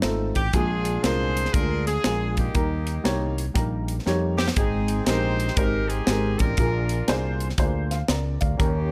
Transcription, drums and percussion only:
0.02 snare, closed hi-hat
0.35 kick, closed hi-hat
0.53 kick, closed hi-hat
0.85 closed hi-hat
1.04 snare, closed hi-hat
1.37 closed hi-hat
1.45 snare
1.54 kick, closed hi-hat
1.87 snare, closed hi-hat
2.04 snare, closed hi-hat
2.37 kick, closed hi-hat
2.55 kick, closed hi-hat
2.87 closed hi-hat
3.05 snare, closed hi-hat
3.38 closed hi-hat
3.55 kick, closed hi-hat
3.88 closed hi-hat
4.07 snare
4.39 snare
4.48 snare
4.56 kick, closed hi-hat
4.88 closed hi-hat
5.07 snare, closed hi-hat
5.40 closed hi-hat
5.48 snare
5.57 kick, closed hi-hat
5.90 closed hi-hat
6.07 snare, closed hi-hat
6.39 kick, closed hi-hat
6.57 kick, closed hi-hat
6.89 closed hi-hat
7.08 snare, closed hi-hat
7.40 closed hi-hat
7.50 snare
7.58 kick, closed hi-hat
7.91 snare, closed hi-hat
8.08 snare, closed hi-hat
8.41 kick, closed hi-hat
8.60 kick, closed hi-hat

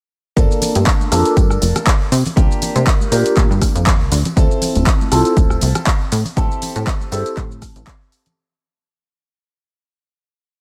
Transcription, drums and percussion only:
0.37 kick, closed hi-hat, tambourine, shaker
0.51 tambourine, shaker
0.62 open hi-hat, tambourine, low conga, shaker
0.75 closed hi-hat, tambourine, high conga, shaker
0.87 kick, clap, closed hi-hat, tambourine, shaker
1.01 tambourine, high conga, shaker
1.12 cross-stick, open hi-hat, tambourine, shaker
1.25 closed hi-hat, tambourine, shaker
1.37 kick, closed hi-hat, tambourine, high conga, shaker
1.50 cross-stick, tambourine, shaker
1.62 open hi-hat, tambourine, high conga, shaker
1.75 cross-stick, closed hi-hat, tambourine, low conga, shaker
1.86 kick, clap, closed hi-hat, tambourine, shaker
2.02 tambourine
2.12 open hi-hat, tambourine, shaker
2.25 open hi-hat, tambourine, low conga, shaker
2.37 kick, closed hi-hat, tambourine, shaker
2.51 tambourine, shaker
2.62 open hi-hat, tambourine, low conga, shaker
2.76 closed hi-hat, tambourine, high conga, shaker
2.87 kick, clap, closed hi-hat, tambourine, shaker
3.01 tambourine, high conga, shaker
3.12 open hi-hat, tambourine, shaker
3.26 closed hi-hat, tambourine, shaker
3.36 kick, clap, closed hi-hat, tambourine, high conga, shaker
3.51 tambourine, shaker
3.62 kick, cross-stick, open hi-hat, tambourine, high conga, shaker
3.76 closed hi-hat, tambourine, low conga, shaker
3.86 kick, clap, closed hi-hat, tambourine, shaker
4.01 tambourine
4.12 open hi-hat, tambourine, shaker
4.25 closed hi-hat, tambourine, low conga, shaker
4.37 kick, closed hi-hat, tambourine, shaker
4.51 tambourine, shaker
4.62 open hi-hat, tambourine, low conga, shaker
4.75 closed hi-hat, tambourine, high conga, shaker
4.87 kick, clap, closed hi-hat, tambourine, shaker
5.01 tambourine, high conga, shaker
5.12 cross-stick, open hi-hat, tambourine, shaker
5.25 closed hi-hat, tambourine, shaker
5.37 kick, closed hi-hat, tambourine, high conga, shaker
5.50 cross-stick, tambourine, shaker
5.61 open hi-hat, tambourine, high conga, shaker
5.75 cross-stick, closed hi-hat, tambourine, low conga, shaker
5.87 kick, clap, closed hi-hat, tambourine, shaker
6.01 tambourine
6.12 open hi-hat, tambourine, shaker
6.25 open hi-hat, tambourine, low conga, shaker
6.37 kick, closed hi-hat, tambourine, shaker
6.51 tambourine, shaker
6.62 open hi-hat, tambourine, low conga, shaker
6.76 closed hi-hat, tambourine, high conga, shaker
6.87 kick, clap, closed hi-hat, tambourine, shaker
7.00 tambourine, high conga, shaker
7.12 open hi-hat, tambourine, shaker
7.26 closed hi-hat, tambourine, shaker
7.37 kick, clap, closed hi-hat, tambourine, high conga, shaker
7.51 tambourine, shaker
7.61 kick, cross-stick, open hi-hat, tambourine, high conga, shaker
7.75 closed hi-hat, tambourine, low conga, shaker
7.87 kick, clap, closed hi-hat, shaker
8.01 tambourine
8.12 open hi-hat, tambourine, shaker
8.26 closed hi-hat, tambourine, low conga, shaker

